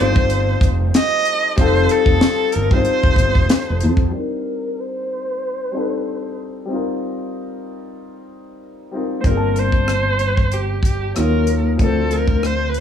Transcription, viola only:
0, 0, Header, 1, 2, 480
1, 0, Start_track
1, 0, Tempo, 638298
1, 1184, Time_signature, 4, 2, 24, 8
1, 9627, End_track
2, 0, Start_track
2, 0, Title_t, "Viola"
2, 0, Program_c, 0, 41
2, 0, Note_on_c, 0, 72, 84
2, 472, Note_off_c, 0, 72, 0
2, 716, Note_on_c, 0, 75, 99
2, 1160, Note_off_c, 0, 75, 0
2, 1193, Note_on_c, 0, 72, 93
2, 1432, Note_on_c, 0, 69, 88
2, 1444, Note_off_c, 0, 72, 0
2, 1912, Note_on_c, 0, 70, 78
2, 1923, Note_off_c, 0, 69, 0
2, 2052, Note_on_c, 0, 72, 87
2, 2064, Note_off_c, 0, 70, 0
2, 2869, Note_off_c, 0, 72, 0
2, 3121, Note_on_c, 0, 70, 74
2, 3604, Note_on_c, 0, 72, 94
2, 3616, Note_off_c, 0, 70, 0
2, 4794, Note_off_c, 0, 72, 0
2, 6922, Note_on_c, 0, 72, 60
2, 6965, Note_on_c, 0, 70, 83
2, 6976, Note_off_c, 0, 72, 0
2, 7206, Note_on_c, 0, 72, 93
2, 7217, Note_off_c, 0, 70, 0
2, 7923, Note_on_c, 0, 67, 74
2, 7934, Note_off_c, 0, 72, 0
2, 8154, Note_off_c, 0, 67, 0
2, 8160, Note_on_c, 0, 67, 66
2, 8376, Note_off_c, 0, 67, 0
2, 8400, Note_on_c, 0, 70, 75
2, 8745, Note_off_c, 0, 70, 0
2, 8878, Note_on_c, 0, 69, 70
2, 9120, Note_on_c, 0, 70, 76
2, 9131, Note_off_c, 0, 69, 0
2, 9369, Note_on_c, 0, 72, 77
2, 9381, Note_off_c, 0, 70, 0
2, 9552, Note_off_c, 0, 72, 0
2, 9557, Note_on_c, 0, 71, 51
2, 9618, Note_off_c, 0, 71, 0
2, 9627, End_track
0, 0, End_of_file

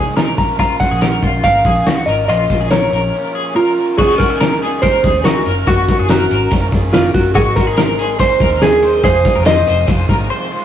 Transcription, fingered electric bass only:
0, 0, Header, 1, 2, 480
1, 0, Start_track
1, 0, Tempo, 422238
1, 672, Time_signature, 4, 2, 24, 8
1, 12106, End_track
2, 0, Start_track
2, 0, Title_t, "Fingered electric bass"
2, 0, Program_c, 0, 33
2, 0, Note_on_c, 0, 36, 86
2, 438, Note_off_c, 0, 36, 0
2, 438, Note_on_c, 0, 34, 104
2, 845, Note_off_c, 0, 34, 0
2, 1037, Note_on_c, 0, 34, 84
2, 1343, Note_off_c, 0, 34, 0
2, 1398, Note_on_c, 0, 34, 80
2, 1602, Note_off_c, 0, 34, 0
2, 1641, Note_on_c, 0, 32, 83
2, 1844, Note_off_c, 0, 32, 0
2, 1875, Note_on_c, 0, 34, 86
2, 2081, Note_off_c, 0, 34, 0
2, 2116, Note_on_c, 0, 37, 82
2, 2322, Note_off_c, 0, 37, 0
2, 2355, Note_on_c, 0, 32, 84
2, 2561, Note_off_c, 0, 32, 0
2, 2588, Note_on_c, 0, 34, 95
2, 2798, Note_off_c, 0, 34, 0
2, 2847, Note_on_c, 0, 34, 82
2, 3254, Note_off_c, 0, 34, 0
2, 3321, Note_on_c, 0, 34, 84
2, 3526, Note_off_c, 0, 34, 0
2, 4533, Note_on_c, 0, 37, 94
2, 5685, Note_off_c, 0, 37, 0
2, 5732, Note_on_c, 0, 39, 90
2, 5934, Note_off_c, 0, 39, 0
2, 6211, Note_on_c, 0, 30, 102
2, 6413, Note_off_c, 0, 30, 0
2, 6453, Note_on_c, 0, 30, 102
2, 6654, Note_off_c, 0, 30, 0
2, 6811, Note_on_c, 0, 30, 94
2, 7115, Note_off_c, 0, 30, 0
2, 7176, Note_on_c, 0, 32, 94
2, 7376, Note_off_c, 0, 32, 0
2, 7410, Note_on_c, 0, 30, 86
2, 7612, Note_off_c, 0, 30, 0
2, 7649, Note_on_c, 0, 30, 96
2, 8055, Note_off_c, 0, 30, 0
2, 8127, Note_on_c, 0, 30, 94
2, 8362, Note_off_c, 0, 30, 0
2, 8362, Note_on_c, 0, 32, 101
2, 9515, Note_off_c, 0, 32, 0
2, 9555, Note_on_c, 0, 39, 95
2, 10240, Note_off_c, 0, 39, 0
2, 10278, Note_on_c, 0, 29, 109
2, 10482, Note_off_c, 0, 29, 0
2, 10643, Note_on_c, 0, 29, 95
2, 10946, Note_off_c, 0, 29, 0
2, 11005, Note_on_c, 0, 29, 90
2, 11205, Note_off_c, 0, 29, 0
2, 11234, Note_on_c, 0, 29, 98
2, 11438, Note_off_c, 0, 29, 0
2, 11471, Note_on_c, 0, 32, 89
2, 11675, Note_off_c, 0, 32, 0
2, 12106, End_track
0, 0, End_of_file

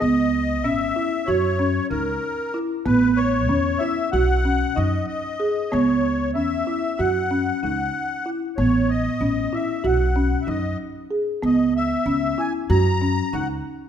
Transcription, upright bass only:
0, 0, Header, 1, 2, 480
1, 0, Start_track
1, 0, Key_signature, 4, "minor"
1, 0, Tempo, 634249
1, 13, Time_signature, 9, 3, 24, 8
1, 10510, End_track
2, 0, Start_track
2, 0, Title_t, "Upright bass"
2, 0, Program_c, 0, 32
2, 15, Note_on_c, 0, 37, 89
2, 495, Note_off_c, 0, 37, 0
2, 495, Note_on_c, 0, 32, 89
2, 680, Note_off_c, 0, 32, 0
2, 969, Note_on_c, 0, 42, 94
2, 1342, Note_off_c, 0, 42, 0
2, 1443, Note_on_c, 0, 37, 84
2, 1633, Note_off_c, 0, 37, 0
2, 2162, Note_on_c, 0, 33, 91
2, 2645, Note_off_c, 0, 33, 0
2, 2645, Note_on_c, 0, 40, 88
2, 2834, Note_off_c, 0, 40, 0
2, 3127, Note_on_c, 0, 35, 90
2, 3501, Note_off_c, 0, 35, 0
2, 3612, Note_on_c, 0, 42, 90
2, 3798, Note_off_c, 0, 42, 0
2, 4337, Note_on_c, 0, 37, 98
2, 4813, Note_off_c, 0, 37, 0
2, 4813, Note_on_c, 0, 40, 89
2, 4999, Note_off_c, 0, 40, 0
2, 5293, Note_on_c, 0, 42, 84
2, 5664, Note_off_c, 0, 42, 0
2, 5775, Note_on_c, 0, 37, 76
2, 5960, Note_off_c, 0, 37, 0
2, 6492, Note_on_c, 0, 33, 98
2, 6863, Note_off_c, 0, 33, 0
2, 6966, Note_on_c, 0, 33, 87
2, 7154, Note_off_c, 0, 33, 0
2, 7449, Note_on_c, 0, 35, 92
2, 7821, Note_off_c, 0, 35, 0
2, 7929, Note_on_c, 0, 42, 87
2, 8115, Note_off_c, 0, 42, 0
2, 8652, Note_on_c, 0, 37, 95
2, 9023, Note_off_c, 0, 37, 0
2, 9124, Note_on_c, 0, 37, 91
2, 9313, Note_off_c, 0, 37, 0
2, 9609, Note_on_c, 0, 42, 101
2, 9981, Note_off_c, 0, 42, 0
2, 10091, Note_on_c, 0, 37, 90
2, 10277, Note_off_c, 0, 37, 0
2, 10510, End_track
0, 0, End_of_file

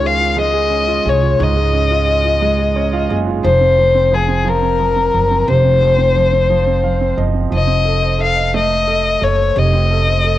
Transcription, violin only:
0, 0, Header, 1, 2, 480
1, 0, Start_track
1, 0, Tempo, 680272
1, 987, Time_signature, 6, 3, 24, 8
1, 7327, End_track
2, 0, Start_track
2, 0, Title_t, "Violin"
2, 0, Program_c, 0, 40
2, 44, Note_on_c, 0, 77, 79
2, 275, Note_off_c, 0, 77, 0
2, 287, Note_on_c, 0, 75, 80
2, 770, Note_on_c, 0, 73, 67
2, 781, Note_off_c, 0, 75, 0
2, 1009, Note_on_c, 0, 75, 73
2, 1020, Note_off_c, 0, 73, 0
2, 2198, Note_off_c, 0, 75, 0
2, 2438, Note_on_c, 0, 72, 82
2, 2921, Note_on_c, 0, 68, 71
2, 2932, Note_off_c, 0, 72, 0
2, 3164, Note_on_c, 0, 70, 78
2, 3174, Note_off_c, 0, 68, 0
2, 3875, Note_off_c, 0, 70, 0
2, 3886, Note_on_c, 0, 72, 81
2, 5048, Note_off_c, 0, 72, 0
2, 5327, Note_on_c, 0, 75, 77
2, 5768, Note_off_c, 0, 75, 0
2, 5803, Note_on_c, 0, 77, 78
2, 6018, Note_off_c, 0, 77, 0
2, 6039, Note_on_c, 0, 75, 78
2, 6518, Note_on_c, 0, 73, 72
2, 6529, Note_off_c, 0, 75, 0
2, 6759, Note_on_c, 0, 75, 72
2, 6770, Note_off_c, 0, 73, 0
2, 7327, Note_off_c, 0, 75, 0
2, 7327, End_track
0, 0, End_of_file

